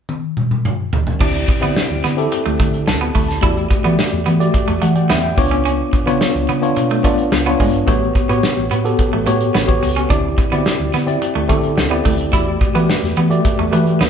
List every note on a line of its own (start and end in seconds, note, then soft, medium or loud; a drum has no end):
0.09 high tom medium
0.37 mid tom medium
0.51 mid tom medium
0.65 mid tom medium
0.93 floor tom medium
1.07 floor tom medium
1.20 1.42 D2 medium
1.20 1.58 C4 medium
1.20 1.29 D4 medium
1.20 1.58 E4 medium
1.20 1.58 G4 medium
1.20 1.59 D5 medium
1.20 kick loud
1.20 crash medium
1.35 closed hi-hat soft
1.48 muted clean electric guitar stroke soft
1.48 kick medium
1.48 closed hi-hat medium
1.61 1.74 D3 medium
1.61 1.71 B3 medium
1.61 2.12 C4 medium
1.61 2.12 E4 medium
1.61 2.12 G4 medium
1.61 2.13 D5 medium
1.61 closed hi-hat medium
1.76 snare loud
1.90 2.01 D2 medium
2.04 2.26 D3 medium
2.04 2.12 B3 medium
2.04 snare soft
2.04 closed hi-hat medium
2.17 2.55 C4 medium
2.17 2.55 E4 medium
2.17 2.56 G4 medium
2.17 2.56 A4 medium
2.17 closed hi-hat soft
2.32 muted clean electric guitar stroke soft
2.32 closed hi-hat medium
2.46 2.57 D2 medium
2.46 2.54 A3 medium
2.46 closed hi-hat soft
2.60 2.89 D3 medium
2.60 2.68 A3 medium
2.60 kick medium
2.60 closed hi-hat medium
2.74 closed hi-hat soft
2.87 3.09 D2 medium
2.87 3.14 A5 medium
2.87 muted clean electric guitar stroke soft
2.87 snare loud
3.01 3.10 B3 medium
3.15 3.37 D2 medium
3.15 3.23 A3 medium
3.15 3.28 B5 medium
3.15 kick medium
3.15 open hi-hat medium
3.28 3.55 A5 medium
3.28 snare soft
3.28 closed hi-hat soft
3.41 3.65 E2 medium
3.41 3.80 A3 medium
3.41 3.51 E4 medium
3.41 3.80 F#4 medium
3.41 3.80 G4 medium
3.41 3.80 D5 medium
3.41 kick loud
3.41 closed hi-hat medium
3.57 closed hi-hat soft
3.71 muted clean electric guitar stroke soft
3.71 kick medium
3.71 closed hi-hat medium
3.83 3.96 E3 medium
3.83 4.34 A3 medium
3.83 3.93 B3 medium
3.83 4.34 F#4 medium
3.83 4.35 G4 medium
3.83 4.35 D5 medium
3.83 closed hi-hat medium
3.99 snare loud
4.13 4.23 E2 medium
4.13 closed hi-hat soft
4.26 4.48 E3 medium
4.26 4.35 B3 medium
4.26 closed hi-hat medium
4.39 4.77 A3 medium
4.39 4.78 F#4 medium
4.39 4.78 G4 medium
4.39 4.78 D5 medium
4.39 closed hi-hat soft
4.54 muted clean electric guitar stroke soft
4.54 kick medium
4.54 closed hi-hat medium
4.68 4.79 E2 medium
4.68 4.76 A3 medium
4.68 closed hi-hat soft
4.82 5.12 E3 medium
4.82 4.90 A3 medium
4.82 4.95 F#5 medium
4.82 closed hi-hat medium
4.95 5.09 D5 medium
4.95 5.09 G5 medium
4.95 closed hi-hat soft
5.10 5.32 E2 medium
5.10 5.18 B3 medium
5.10 5.23 E5 medium
5.10 5.23 G5 medium
5.10 snare loud
5.24 5.50 G5 medium
5.37 5.81 C#2 loud
5.37 6.00 B3 medium
5.37 6.01 D4 medium
5.37 6.01 F4 medium
5.37 6.01 C#5 medium
5.37 5.64 D6 medium
5.37 muted clean electric guitar stroke soft
5.37 kick loud
5.37 open hi-hat medium
5.51 5.60 C#4 medium
5.51 closed hi-hat soft
5.65 5.74 C#4 medium
5.65 closed hi-hat medium
5.93 muted clean electric guitar stroke soft
5.93 kick medium
5.93 closed hi-hat medium
6.06 6.18 C#3 loud
6.06 6.57 B3 medium
6.06 6.16 B3 medium
6.06 6.57 D4 medium
6.06 6.57 F4 medium
6.06 6.58 C#5 medium
6.06 closed hi-hat medium
6.21 snare loud
6.35 6.46 C#2 medium
6.35 closed hi-hat soft
6.49 6.71 C#3 loud
6.49 6.57 B3 medium
6.49 closed hi-hat medium
6.62 7.00 B3 medium
6.62 7.00 D4 medium
6.62 7.00 F4 medium
6.62 7.01 C#5 medium
6.62 closed hi-hat medium
6.76 6.98 B2 medium
6.76 muted clean electric guitar stroke soft
6.76 closed hi-hat medium
6.90 6.99 A3 medium
6.90 closed hi-hat soft
7.03 7.13 A3 medium
7.03 7.42 B3 medium
7.03 7.42 D4 medium
7.03 7.42 F4 medium
7.03 7.42 D5 medium
7.03 kick medium
7.03 closed hi-hat medium
7.18 closed hi-hat soft
7.32 7.54 C#2 medium
7.32 muted clean electric guitar stroke soft
7.32 snare loud
7.45 7.84 B3 medium
7.45 7.55 B3 medium
7.45 7.84 D4 medium
7.45 7.84 F4 medium
7.45 7.84 C#5 medium
7.45 closed hi-hat soft
7.60 7.82 G1 medium
7.60 7.69 G#3 medium
7.60 kick medium
7.60 open hi-hat medium
7.74 closed hi-hat soft
7.87 8.10 A1 medium
7.87 7.97 A3 medium
7.87 8.25 B3 medium
7.87 8.26 F#4 medium
7.87 8.26 G4 medium
7.87 8.26 C#5 medium
7.87 kick loud
7.87 closed hi-hat medium
8.15 muted clean electric guitar stroke soft
8.15 kick medium
8.15 closed hi-hat medium
8.29 8.40 A2 loud
8.29 8.80 B3 medium
8.29 8.38 B3 medium
8.29 8.80 F#4 medium
8.29 8.80 G4 medium
8.29 8.80 C#5 medium
8.29 closed hi-hat medium
8.43 snare loud
8.57 8.68 A1 medium
8.71 8.93 A2 medium
8.71 8.80 B3 medium
8.71 closed hi-hat medium
8.84 9.23 B3 medium
8.84 9.23 F#4 medium
8.84 9.23 G4 medium
8.84 9.23 A4 medium
8.84 closed hi-hat soft
8.99 muted clean electric guitar stroke soft
8.99 kick medium
8.99 closed hi-hat medium
9.13 9.24 A1 medium
9.13 9.22 A3 medium
9.26 9.49 A2 medium
9.26 9.35 A3 medium
9.26 9.64 B3 medium
9.26 9.64 F#4 medium
9.26 9.64 G4 medium
9.26 9.65 C#5 medium
9.26 closed hi-hat medium
9.41 closed hi-hat soft
9.55 9.77 A1 medium
9.55 9.63 B3 medium
9.55 snare loud
9.67 10.06 B3 medium
9.67 10.06 F#4 medium
9.67 10.06 G4 medium
9.67 10.06 C#5 medium
9.67 kick medium
9.67 closed hi-hat soft
9.83 10.05 C#2 medium
9.83 muted clean electric guitar stroke soft
9.83 open hi-hat medium
9.96 10.05 C#4 medium
9.96 closed hi-hat soft
10.09 10.32 D2 medium
10.09 10.48 C4 medium
10.09 10.19 D4 medium
10.09 10.48 E4 medium
10.09 10.48 G4 medium
10.09 10.48 D5 medium
10.09 kick loud
10.09 closed hi-hat medium
10.38 muted clean electric guitar stroke soft
10.38 kick medium
10.38 closed hi-hat medium
10.51 10.63 D3 medium
10.51 10.61 B3 medium
10.51 11.02 C4 medium
10.51 11.02 E4 medium
10.51 10.59 F#4 medium
10.51 11.03 D5 medium
10.51 closed hi-hat medium
10.58 11.06 G4 medium
10.66 snare loud
10.80 10.91 D2 medium
10.94 11.16 D3 medium
10.94 11.03 B3 medium
10.94 snare soft
10.94 closed hi-hat medium
11.07 11.45 C4 medium
11.07 11.45 E4 medium
11.07 11.45 G4 medium
11.07 11.46 D5 medium
11.07 closed hi-hat soft
11.22 muted clean electric guitar stroke soft
11.22 closed hi-hat medium
11.35 11.47 D2 medium
11.35 11.44 A3 medium
11.48 11.79 D3 medium
11.48 11.58 A3 medium
11.48 11.87 C4 medium
11.48 11.87 E4 medium
11.48 11.87 G4 medium
11.48 11.87 A4 medium
11.48 kick medium
11.48 closed hi-hat medium
11.63 closed hi-hat soft
11.78 11.99 D2 medium
11.78 muted clean electric guitar stroke soft
11.78 snare loud
11.90 12.00 B3 medium
11.90 12.28 C4 medium
11.90 12.29 E4 medium
11.90 12.29 G4 medium
11.90 12.29 D5 medium
11.90 closed hi-hat soft
12.05 12.28 D2 medium
12.05 12.14 A3 medium
12.05 kick medium
12.05 open hi-hat medium
12.20 closed hi-hat soft
12.32 12.55 E2 medium
12.32 12.70 A3 medium
12.32 12.42 E4 medium
12.32 12.70 F#4 medium
12.32 12.71 G4 medium
12.32 12.71 D5 medium
12.32 kick loud
12.32 closed hi-hat medium
12.61 muted clean electric guitar stroke soft
12.61 kick medium
12.61 closed hi-hat medium
12.74 12.86 E3 medium
12.74 13.25 A3 medium
12.74 12.84 B3 medium
12.74 13.25 F#4 medium
12.74 13.25 G4 medium
12.74 13.25 B4 medium
12.74 closed hi-hat medium
12.90 snare loud
13.03 13.14 E2 medium
13.03 snare soft
13.03 closed hi-hat soft
13.17 13.39 E3 loud
13.17 13.26 B3 medium
13.17 closed hi-hat medium
13.30 13.68 A3 medium
13.30 13.68 F#4 medium
13.30 13.68 G4 medium
13.30 13.69 D5 medium
13.30 closed hi-hat medium
13.45 muted clean electric guitar stroke soft
13.45 kick medium
13.45 closed hi-hat medium
13.59 13.70 E2 medium
13.59 13.67 A3 medium
13.71 14.02 E3 medium
13.71 14.10 A3 medium
13.71 13.81 A3 medium
13.71 14.10 F#4 medium
13.71 14.10 G4 medium
13.71 14.10 B4 medium
13.71 closed hi-hat medium
13.87 closed hi-hat soft
14.01 14.10 E2 medium
14.01 14.09 B3 medium
14.01 snare loud